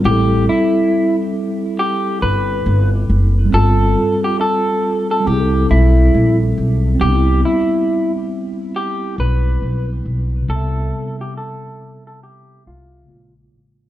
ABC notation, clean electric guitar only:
X:1
M:4/4
L:1/16
Q:"Swing 16ths" 1/4=69
K:C
V:1 name="Clean electric guitar"
G2 E3 z3 G2 B3 z3 | A3 G A3 A G2 E3 z3 | G2 E3 z3 G2 B3 z3 | A3 G A3 A G2 F3 z3 |]